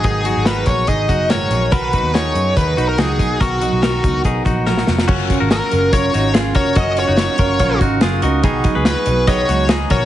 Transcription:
<<
  \new Staff \with { instrumentName = "Glockenspiel" } { \time 4/4 \key fis \major \tempo 4 = 143 r1 | r1 | r1 | r1 |
r4. cis'''8 eis'''8 fis'''8 dis'''8 cis'''8 | b''8. r2. r16 | }
  \new Staff \with { instrumentName = "Lead electric guitar" } { \time 4/4 \key fis \major gis'4 b'8 cis''8 dis''4 cis''4 | b'4 cis''4 b'8. ais'16 gis'4 | fis'2 r2 | r4 ais'4 cis''4 r8 cis''8 |
dis''8 cis''2 r4. | r4 b'4 cis''4 r8 cis''8 | }
  \new Staff \with { instrumentName = "Clean electric guitar" } { \time 4/4 \key fis \major <dis' gis'>8 <dis' fis'>8 <fis' ais'>4 <dis' gis'>8 <dis' fis'>8 <fis' ais'>4 | <fis' ais'>8 <dis' fis'>8 <dis' gis'>4. <dis' fis'>8 <dis' fis'>4 | <fis' ais'>8 <dis' fis'>8 <fis' ais'>4 <dis' gis'>8 <dis' fis'>8 <fis' ais'>4 | <cis' fis'>8. <fis' ais'>16 <fis' ais'>4 <ais' cis''>8 <dis' fis'>8 <eis' gis'>8 <fis' ais'>8 |
<cis' fis'>8. <dis' fis'>8. <fis' ais'>8 <ais' cis''>8 <dis' fis'>8 <eis' gis'>8 <dis' fis'>8 | <dis' gis'>8. <gis' b'>16 <gis' b'>4 <b' dis''>8 <dis' fis'>8 <dis' gis'>8 <fis' ais'>8 | }
  \new Staff \with { instrumentName = "Steel-string acoustic guitar" } { \time 4/4 \key fis \major <gis, dis fis b dis' gis'>8 <fis b dis' gis'>8 <gis, dis fis b dis' gis'>8 <fis b dis' gis'>8 <fis b dis' gis'>8 <fis b dis' gis'>8 <gis, dis fis b dis' gis'>8 <fis b dis' gis'>8 | <b, dis fis b dis' ais'>8 <fis b dis' ais'>8 <b, dis fis b dis' ais'>8 <fis b dis' ais'>8 <fis b dis' ais'>8 <fis b dis' ais'>8 <b, dis fis b dis' ais'>8 <fis b dis' ais'>8 | <b, dis fis b dis' ais'>8 <fis b dis' ais'>8 <b, dis fis b dis' ais'>8 <fis b dis' ais'>8 <fis b dis' ais'>8 <fis b dis' ais'>8 <b, dis fis b dis' ais'>8 <fis b dis' ais'>8 | <fis cis' eis' ais'>8 <cis' eis' ais'>8 <fis cis' eis' ais'>8 <cis' eis' ais'>8 <fis cis' eis' ais'>8 <cis' eis' ais'>8 <fis cis' eis' ais'>8 <cis' eis' ais'>8 |
<fis cis' eis' ais'>8 <cis' eis' ais'>8 <fis cis' eis' ais'>8 <cis' eis' ais'>8 <fis cis' eis' ais'>8 <cis' eis' ais'>8 <fis cis' eis' ais'>8 <cis' eis' ais'>8 | <b, dis fis b dis' gis'>8 <fis b dis' gis'>8 <fis b dis' gis'>8 <fis b dis' gis'>8 <b, dis fis b dis' gis'>8 <fis b dis' gis'>8 <fis b dis' gis'>8 <fis b dis' gis'>8 | }
  \new Staff \with { instrumentName = "Picked electric bass" } { \clef bass \time 4/4 \key fis \major gis,,8. gis,,8. ais,,8 gis,,8 fis,,4 ais,,8 | b,,8. dis,8. fis,8 dis,8 b,,8 cis,8 b,,8 | b,,8. b,,8. cis,8 b,,8 ais,,4 eis,,8 | fis,,8. gis,,8 r16 fis,,4 gis,,4 eis,,8 |
fis,,8. fis,,8 r16 fis,,8 ais,,8 gis,,8 fis,,8 cis,8 | b,,8. cis,8 r16 b,,4 cis,4 ais,,8 | }
  \new DrumStaff \with { instrumentName = "Drums" } \drummode { \time 4/4 <hh bd>8 hh8 <hh sn>8 <hh bd>8 <hh bd>8 <hh bd>8 <hh sn>8 hh8 | <hh bd>8 <hh bd>8 <hh sn>8 hh8 <hh bd>8 hh8 <hh sn>8 <hh bd>8 | <hh bd>8 hh8 <hh sn>8 <hh bd>8 <hh bd>8 <hh bd>8 sn16 sn16 sn16 sn16 | <cymc bd>8 <hh bd>8 <hh sn>8 hh8 <hh bd>8 hh8 <hh sn>8 <hh bd>8 |
<hh bd>8 hh8 <hh sn>8 <hh bd>8 <hh bd>8 <hh bd>8 <hh sn>8 hh8 | <hh bd>8 <hh bd>8 <hh sn>8 hh8 <hh bd>8 hh8 <hh sn>8 <hh bd>8 | }
>>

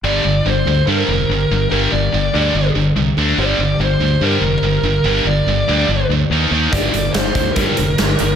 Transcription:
<<
  \new Staff \with { instrumentName = "Lead electric guitar" } { \time 4/4 \key g \minor \tempo 4 = 144 d''4 c''4 bes'2 | bes'8 d''2 r4. | d''4 c''4 bes'2 | bes'8 d''2 r4. |
d''4 c''4 bes'2 | }
  \new Staff \with { instrumentName = "Distorted electric guitar" } { \clef bass \time 4/4 \key g \minor <g, d g>8 <g, d>8 <g, d>8 <g, d>8 <g, d g>8 <g, d>8 <g, d>8 <g, d>8 | <g, d g>8 <g, d>8 <g, d>8 <g, d g>8 <g, d>8 <g, d>8 <g, d>8 <d a d'>8 | <g, d g>8 <g, d>8 <g, d>8 <g, d>8 <g, d g>8 <g, d>8 <g, d>8 <g, d>8 | <g, d g>8 <g, d>8 <g, d>8 <g, d g>8 <g, d>8 <g, d>8 <ees bes ees'>8 <ees bes ees'>8 |
<g, d g>8 <g, d>8 <g, d>8 <g, d>8 <g, d g>8 <g, d>8 <g, d>8 <g, d>8 | }
  \new Staff \with { instrumentName = "Overdriven electric guitar" } { \clef bass \time 4/4 \key g \minor <g, d g>8 <g, d>8 <g, d>8 <g, d>8 <g, d g>8 <g, d>8 <g, d>8 <g, d>8 | <g, d g>8 <g, d>8 <g, d>8 <g, d g>8 <g, d>8 <g, d>8 <g, d>8 <d a d'>8 | <g, d g>8 <g, d>8 <g, d>8 <g, d>8 <g, d g>8 <g, d>8 <g, d>8 <g, d>8 | <g, d g>8 <g, d>8 <g, d>8 <g, d g>8 <g, d>8 <g, d>8 <ees bes ees'>8 <ees bes ees'>8 |
<g, d g>8 <g, d>8 <g, d>8 <g, d>8 <g, d g>8 <g, d>8 <g, d>8 <g, d>8 | }
  \new Staff \with { instrumentName = "Fingered electric bass" } { \clef bass \time 4/4 \key g \minor g,,8 g,,8 g,,8 d,8 g,8 f,,8 g,,8 g,,8 | g,,8 g,,8 g,,8 d,8 g,,8 g,,8 c,8 d,8 | g,,8 g,,8 g,,8 d,8 g,8 f,,8 g,,8 g,,8 | g,,8 g,,8 g,,8 d,8 g,,8 d,8 ees,8 ees,8 |
g,,8 g,,8 g,,8 d,8 g,8 f,,8 g,,8 g,,8 | }
  \new DrumStaff \with { instrumentName = "Drums" } \drummode { \time 4/4 r4 r4 r4 r4 | r4 r4 r4 r4 | r4 r4 r4 r4 | r4 r4 r4 r4 |
<hh bd>8 hh8 <hh sn>8 <hh bd sn>8 <hh bd>8 hh8 <hh sn>8 hh8 | }
>>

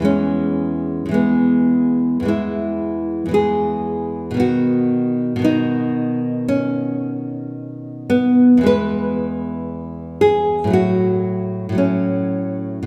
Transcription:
\new Staff \with { instrumentName = "Nylon-string guitar" } { \clef bass \time 4/4 \key e \major \tempo 4 = 57 << { cis'4 b4 e'4 gis'4 | fis'4 dis'4 cis'4. b8 | b'4. gis'8 fis'4 cis'4 | } \\ { <e, e gis>4 <e, e gis>4 <e, e gis>4 <e, e gis>4 | <b, dis b>4 <b, dis b>2. | <e, e gis>2 <a, fis a>4 <a, fis a>4 | } >> }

